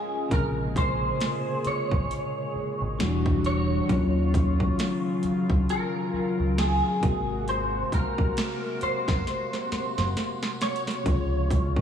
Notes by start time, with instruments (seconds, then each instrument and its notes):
Already playing: tine electric piano G#3 C#4 F4, analog synth pad G#3 C#4 F4, clean electric guitar G#4
0.29 picked electric bass A#1, analog synth pad A#2 G#4, tine electric piano C3 C#3 A#3, clean electric guitar A#4, kick, closed hi-hat
0.34 tine electric piano G#4
0.76 clean electric guitar C5, kick, closed hi-hat
1.20 snare, closed hi-hat
1.65 clean electric guitar C#5, muted picked electric bass stroke, closed hi-hat
1.91 picked electric bass G#1, kick
2.11 closed hi-hat
2.55 muted picked electric bass stroke
2.81 picked electric bass G#1
2.99 picked electric bass E1, analog synth pad D3 G3 F#4, tine electric piano E3 G3 D4 F#4, snare, closed hi-hat
3.26 kick
3.44 clean electric guitar C#5, closed hi-hat
3.87 picked electric bass D#2, analog synth pad C#3 F#3 F4, tine electric piano D#3 F#3 C#4, kick, closed hi-hat
3.92 tine electric piano F4
4.34 kick, closed hi-hat
4.60 kick
4.79 snare, closed hi-hat
5.23 muted picked electric bass stroke, closed hi-hat
5.50 picked electric bass C#2, kick
5.69 clean electric guitar A#4, closed hi-hat
6.14 muted picked electric bass stroke
6.40 picked electric bass C#2
6.58 clean electric guitar G#4, snare, closed hi-hat
7.00 picked electric bass G#1, tine electric piano C3 G#3 A#3, analog synth pad C3 A#3 F#4, kick, closed hi-hat
7.05 tine electric piano F#4
7.48 clean electric guitar C5, closed hi-hat
7.92 clean electric guitar A#4, kick, closed hi-hat
8.18 kick
8.37 snare, closed hi-hat
8.81 clean electric guitar C5, muted picked electric bass stroke, closed hi-hat
9.08 picked electric bass F#1, kick, snare
9.27 snare, closed hi-hat
9.53 snare
9.72 muted picked electric bass stroke, snare
9.98 picked electric bass F#1, snare
10.17 snare, closed hi-hat
10.43 snare
10.61 clean electric guitar C#5, snare, closed hi-hat, open hi-hat
10.76 closed hi-hat
10.87 snare, closed hi-hat
11.04 picked electric bass C#2, tine electric piano C3 C#3 G#3, analog synth pad F3 G#3 F4, kick, closed hi-hat
11.09 tine electric piano F4
11.51 kick, closed hi-hat
11.76 kick